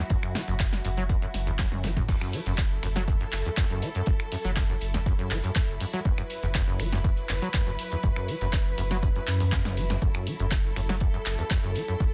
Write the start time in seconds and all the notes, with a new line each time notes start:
Already playing: F#3 E4 F#4 B4 E5 A5
0.10 F#1 F#2, kick, closed hi-hat, shaker
0.23 F#2, finger snap, closed hi-hat, shaker
0.35 F#3, snare, closed hi-hat, open hi-hat
0.47 F#1 F#2, snare, closed hi-hat, shaker
0.60 F#2, kick, snare, clap, closed hi-hat, shaker
0.72 snare, open hi-hat, shaker
0.85 F#1 F#2, closed hi-hat, open hi-hat
0.97 F#3, closed hi-hat, shaker
1.09 F#2, kick, closed hi-hat, shaker
1.22 F#2, closed hi-hat, shaker
1.34 F#1, snare, closed hi-hat, open hi-hat
1.47 E2, closed hi-hat, shaker
1.59 F#2, kick, snare, clap, closed hi-hat, high tom, shaker
1.72 F#1 F#2, high tom, shaker
1.83 F#3, snare, closed hi-hat, open hi-hat
1.96 F#2, kick, snare, closed hi-hat, mid tom, shaker
2.09 F#1 F#2 F#3 E4 A4, kick, closed hi-hat, crash, shaker
2.21 F#2, finger snap, closed hi-hat, shaker
2.33 F#3, closed hi-hat, open hi-hat
2.46 F#1 F#2, closed hi-hat, shaker
2.58 F#2, kick, snare, clap, closed hi-hat, shaker
2.70 shaker
2.83 F#1 F#2, finger snap, closed hi-hat, open hi-hat
2.96 F#3, snare, closed hi-hat, shaker
3.08 F#2, kick, closed hi-hat, shaker
3.20 F#2, closed hi-hat, shaker
3.32 F#1, clap, closed hi-hat, open hi-hat
3.45 E2, snare, closed hi-hat, shaker
3.57 F#2, kick, snare, clap, closed hi-hat, shaker
3.70 F#1 F#2, closed hi-hat, shaker
3.82 F#3, snare, closed hi-hat, open hi-hat
3.95 F#2, closed hi-hat, shaker
4.06 F#1 F#2, kick, closed hi-hat, shaker
4.19 finger snap, closed hi-hat, shaker
4.32 F#2, closed hi-hat, open hi-hat
4.44 F#1 F#3, snare, closed hi-hat, shaker
4.56 F#2, kick, snare, clap, closed hi-hat, shaker
4.69 F#2, snare, shaker
4.81 F#1, closed hi-hat, open hi-hat
4.94 E2, snare, closed hi-hat, shaker
5.06 F#2, kick, closed hi-hat, shaker
5.19 F#2, closed hi-hat, shaker
5.31 F#1 F#3, clap, closed hi-hat, open hi-hat
5.44 F#2, open hi-hat, shaker
5.55 F#2, kick, snare, clap, closed hi-hat, shaker
5.68 F#1, closed hi-hat, shaker
5.80 F#2, open hi-hat
5.93 F#3, closed hi-hat, shaker
6.05 F#1 F#2 B4, kick, closed hi-hat, shaker
6.18 F#2, finger snap, closed hi-hat, shaker
6.30 closed hi-hat, open hi-hat
6.42 F#1 E2, closed hi-hat, shaker
6.54 F#2, kick, snare, clap, closed hi-hat, shaker
6.68 F#2, shaker
6.79 F#1 F#3, finger snap, closed hi-hat, open hi-hat
6.92 F#2, snare, closed hi-hat, shaker
7.04 F#2, kick, closed hi-hat, shaker
7.17 closed hi-hat, shaker
7.29 F#1 F#2, clap, closed hi-hat, open hi-hat
7.42 F#3, snare, closed hi-hat, shaker
7.53 F#2, kick, snare, clap, closed hi-hat, shaker
7.67 F#1 F#2, closed hi-hat, shaker
7.78 snare, closed hi-hat, open hi-hat
7.92 E2, closed hi-hat, shaker
8.03 F#1 F#2, kick, closed hi-hat, shaker
8.16 F#2, finger snap, closed hi-hat, shaker
8.28 F#3, closed hi-hat, open hi-hat
8.41 F#1 F#2, snare, closed hi-hat, shaker
8.53 F#2, kick, snare, clap, closed hi-hat, shaker
8.66 snare, closed hi-hat, shaker
8.78 F#1 F#2, closed hi-hat, open hi-hat
8.91 F#3, snare, closed hi-hat, shaker
9.03 F#2, kick, closed hi-hat, shaker
9.16 F#2, closed hi-hat, shaker
9.27 F#2, clap, closed hi-hat, open hi-hat
9.40 E2, open hi-hat, shaker
9.52 F#2, kick, snare, clap, closed hi-hat, shaker
9.64 F#1 F#2, snare, closed hi-hat, shaker
9.77 F#3, open hi-hat
9.90 F#2, snare, closed hi-hat, shaker
10.01 F#1 F#2 A4, kick, closed hi-hat, shaker
10.14 F#2, finger snap, closed hi-hat, shaker
10.26 F#3, closed hi-hat, open hi-hat
10.40 F#1 F#2, closed hi-hat, shaker
10.51 F#2, kick, snare, clap, closed hi-hat, shaker
10.65 shaker
10.76 F#1 F#2, finger snap, closed hi-hat, open hi-hat
10.89 F#3, snare, closed hi-hat, shaker
11.00 F#2, kick, closed hi-hat, shaker
11.14 F#2, closed hi-hat, shaker
11.26 F#1, clap, closed hi-hat, open hi-hat
11.38 E2, snare, closed hi-hat, shaker
11.50 F#2, kick, snare, clap, closed hi-hat, shaker
11.63 F#1 F#2, closed hi-hat, shaker
11.75 F#3, snare, closed hi-hat, open hi-hat
11.88 F#2, closed hi-hat, shaker
12.00 F#1 F#2, kick, closed hi-hat, shaker